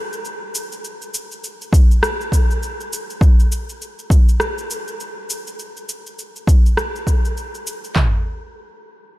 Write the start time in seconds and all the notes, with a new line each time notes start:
0.13 cabasa
0.25 cabasa
0.55 cabasa
0.72 cabasa
0.84 cabasa
1.02 cabasa
1.14 cabasa
1.32 cabasa
1.44 cabasa
1.62 cabasa
1.73 kick, cabasa
1.91 cabasa
2.03 cross-stick, cabasa
2.21 cabasa
2.32 kick, cabasa
2.51 cabasa
2.63 cabasa
2.81 cabasa
2.93 cabasa
3.10 cabasa
3.21 kick, cabasa
3.40 cabasa
3.52 cabasa
3.69 cabasa
3.82 cabasa
3.99 cabasa
4.10 kick, cabasa
4.29 cabasa
4.40 cross-stick, cabasa
4.58 cabasa
4.70 cabasa
4.88 cabasa
5.00 cabasa
5.30 cabasa
5.47 cabasa
5.59 cabasa
5.77 cabasa
5.89 cabasa
6.06 cabasa
6.19 cabasa
6.36 cabasa
6.47 kick, cabasa
6.66 cabasa
6.77 cross-stick, cabasa
6.96 cabasa
7.07 kick, cabasa
7.25 cabasa
7.37 cabasa
7.55 cabasa
7.67 cabasa
7.84 cabasa
7.96 kick, clap, floor tom